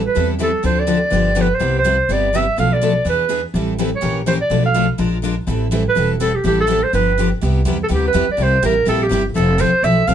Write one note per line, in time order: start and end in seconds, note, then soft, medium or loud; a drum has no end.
0.06 0.28 B4 medium
0.15 0.55 E2 medium
0.15 0.34 E3 medium
0.15 0.34 G3 medium
0.15 0.34 C4 medium
0.15 0.34 E4 medium
0.15 0.34 A4 medium
0.39 0.50 E3 medium
0.39 0.50 G3 medium
0.39 0.50 C4 medium
0.39 0.50 E4 medium
0.39 0.51 A4 medium
0.39 0.64 A4 medium
0.63 1.03 D2 medium
0.63 0.81 D3 medium
0.63 0.82 F3 medium
0.63 0.82 C4 medium
0.63 0.82 D4 medium
0.63 0.82 A4 medium
0.63 0.81 C5 medium
0.80 1.43 D5 medium
0.87 0.98 D3 medium
0.87 0.98 F3 medium
0.87 0.98 C4 medium
0.87 0.98 D4 medium
0.87 0.98 A4 medium
1.12 1.51 G1 medium
1.12 1.30 D3 medium
1.12 1.31 F3 medium
1.12 1.31 B3 medium
1.12 1.31 D4 medium
1.12 1.31 G4 medium
1.35 1.46 D3 medium
1.35 1.47 F3 medium
1.35 1.46 B3 medium
1.35 1.47 D4 medium
1.35 1.47 G4 medium
1.41 1.56 B4 medium
1.54 1.77 C5 medium
1.60 1.99 C2 medium
1.60 1.78 C3 medium
1.60 1.79 G3 medium
1.60 1.79 B3 medium
1.60 1.79 E4 medium
1.60 1.79 G4 medium
1.79 2.14 C5 medium
1.84 1.95 C3 medium
1.84 1.95 G3 medium
1.84 1.95 B3 medium
1.84 1.95 E4 medium
1.84 1.95 G4 medium
2.09 2.48 G1 medium
2.09 2.27 C3 medium
2.09 2.27 G3 medium
2.09 2.28 B3 medium
2.09 2.28 E4 medium
2.09 2.28 G4 medium
2.09 2.37 D5 loud
2.35 2.44 C3 medium
2.35 2.44 G3 medium
2.35 2.45 B3 medium
2.35 2.44 E4 medium
2.35 2.45 G4 medium
2.35 2.59 E5 medium
2.58 2.96 B1 medium
2.58 2.76 B2 medium
2.58 2.76 F3 medium
2.58 2.76 A3 medium
2.58 2.76 D4 medium
2.58 2.76 A4 medium
2.58 2.76 B4 medium
2.58 2.74 F5 medium
2.73 3.07 D5 medium
2.81 2.92 B2 medium
2.81 2.92 F3 medium
2.81 2.93 A3 medium
2.81 2.92 D4 medium
2.81 2.92 A4 medium
2.81 2.93 B4 medium
3.05 3.44 E2 medium
3.05 3.24 E3 medium
3.05 3.24 B3 medium
3.05 3.24 D4 medium
3.05 3.24 G#4 medium
3.05 3.24 B4 medium
3.09 3.43 B4 medium
3.29 3.40 E3 medium
3.29 3.40 B3 medium
3.29 3.40 D4 medium
3.29 3.40 G#4 medium
3.29 3.41 B4 medium
3.54 3.93 A1 medium
3.54 3.73 E3 medium
3.54 3.73 G3 medium
3.54 3.73 C4 medium
3.54 3.73 E4 medium
3.54 3.73 A4 medium
3.78 3.89 E3 medium
3.78 3.89 G3 medium
3.78 3.89 C4 medium
3.78 3.89 E4 medium
3.78 3.89 A4 medium
3.96 4.17 C#5 medium
4.01 4.41 A#1 medium
4.01 4.20 E3 medium
4.01 4.20 A#3 medium
4.01 4.20 C#4 medium
4.01 4.20 G4 medium
4.01 4.20 A#4 medium
4.26 4.37 E3 medium
4.26 4.37 A#3 medium
4.26 4.37 C#4 medium
4.26 4.37 G4 medium
4.26 4.37 A#4 medium
4.26 4.33 C5 medium
4.41 4.63 D5 medium
4.50 4.89 B1 medium
4.50 4.68 B2 medium
4.50 4.69 F3 medium
4.50 4.69 A3 medium
4.50 4.69 D4 medium
4.50 4.69 A4 medium
4.50 4.69 B4 medium
4.66 4.88 F5 medium
4.74 4.85 B2 medium
4.74 4.85 F3 medium
4.74 4.85 A3 medium
4.74 4.85 D4 medium
4.74 4.85 A4 medium
4.74 4.86 B4 medium
4.98 5.38 A#1 medium
4.98 5.17 F3 medium
4.98 5.17 G#3 medium
4.98 5.17 D4 medium
4.98 5.17 F4 medium
4.98 5.17 A#4 medium
5.24 5.34 F3 medium
5.24 5.34 G#3 medium
5.24 5.34 D4 medium
5.24 5.34 F4 medium
5.24 5.34 A#4 medium
5.47 5.86 A1 loud
5.47 5.66 E3 medium
5.47 5.66 G3 medium
5.47 5.66 C4 medium
5.47 5.67 E4 medium
5.47 5.67 A4 medium
5.71 5.82 E3 medium
5.71 5.82 G3 medium
5.71 5.82 C4 medium
5.71 5.82 E4 medium
5.71 5.82 A4 medium
5.89 6.10 B4 medium
5.96 6.35 E1 medium
5.96 6.14 E3 medium
5.96 6.15 G3 medium
5.96 6.15 C4 medium
5.96 6.15 E4 medium
5.96 6.15 A4 medium
6.20 6.30 E3 medium
6.20 6.31 G3 medium
6.20 6.31 C4 medium
6.20 6.31 E4 medium
6.20 6.36 A4 medium
6.20 6.31 A4 medium
6.35 6.45 G4 medium
6.44 6.83 A1 medium
6.44 6.62 E3 medium
6.44 6.63 G3 medium
6.44 6.63 C4 medium
6.44 6.63 E4 medium
6.44 6.58 G4 medium
6.44 6.63 A4 medium
6.61 6.85 A4 medium
6.67 6.78 E3 medium
6.67 6.78 G3 medium
6.67 6.78 C4 medium
6.67 6.79 E4 medium
6.67 6.79 A4 loud
6.83 6.93 C5 medium
6.93 7.32 G1 medium
6.93 7.11 D3 medium
6.93 7.11 F3 medium
6.93 7.11 B3 medium
6.93 7.12 D4 medium
6.93 7.12 G4 medium
6.93 7.29 B4 medium
7.18 7.28 D3 medium
7.18 7.28 F3 medium
7.18 7.29 B3 medium
7.18 7.28 D4 medium
7.18 7.29 G4 medium
7.41 7.65 C2 medium
7.41 7.60 C3 medium
7.41 7.59 G3 medium
7.41 7.60 B3 medium
7.41 7.60 E4 medium
7.41 7.60 G4 medium
7.65 7.89 E2 medium
7.65 7.76 C3 medium
7.65 7.76 G3 medium
7.65 7.76 B3 medium
7.65 7.76 E4 loud
7.65 7.76 G4 medium
7.84 7.87 A4 medium
7.88 8.14 D2 medium
7.88 8.07 C3 medium
7.88 8.08 G3 medium
7.88 8.08 B3 medium
7.88 8.07 E4 medium
7.88 8.08 G4 medium
7.94 8.05 G4 medium
8.08 8.28 B4 medium
8.13 8.27 E2 medium
8.13 8.24 C3 medium
8.13 8.24 G3 medium
8.13 8.24 B3 medium
8.13 8.25 E4 medium
8.13 8.24 G4 medium
8.29 8.45 D5 medium
8.29 muted upright bass stroke soft
8.37 8.62 C2 medium
8.37 8.56 C3 medium
8.37 8.56 G3 medium
8.37 8.56 A#3 medium
8.37 8.56 E4 medium
8.37 8.56 G4 medium
8.43 8.64 C5 medium
8.62 8.86 A1 medium
8.62 8.73 C3 medium
8.62 8.73 G3 medium
8.62 8.73 A#3 medium
8.62 8.73 E4 medium
8.62 8.73 G4 medium
8.62 8.86 A#4 medium
8.86 9.10 A#1 medium
8.86 9.05 C3 medium
8.86 9.05 G3 medium
8.86 9.05 A#3 medium
8.86 9.05 E4 medium
8.86 9.05 G4 medium
8.86 9.04 A4 medium
9.03 9.26 G4 medium
9.11 9.35 G1 medium
9.11 9.22 C3 medium
9.11 9.22 G3 medium
9.11 9.22 A#3 medium
9.11 9.22 E4 loud
9.11 9.22 G4 medium
9.36 9.59 F1 medium
9.36 9.54 F3 medium
9.36 9.54 A3 medium
9.36 9.54 C4 medium
9.36 9.54 E4 medium
9.36 9.62 A4 medium
9.36 9.55 A4 medium
9.58 9.72 A1 medium
9.58 9.69 F3 medium
9.58 9.69 A3 medium
9.58 9.69 C4 medium
9.58 9.70 E4 loud
9.58 9.70 A4 loud
9.58 9.85 C5 loud
9.73 muted upright bass stroke soft
9.83 10.07 B1 medium
9.83 10.02 F3 medium
9.83 10.02 A3 medium
9.83 10.02 C4 medium
9.83 10.02 E4 medium
9.83 10.02 A4 medium
9.83 10.09 E5 loud
10.07 10.14 C2 medium
10.07 10.14 F3 medium
10.07 10.14 A3 medium
10.07 10.14 C4 medium
10.07 10.14 E4 medium
10.07 10.14 A4 medium
10.07 10.14 F5 loud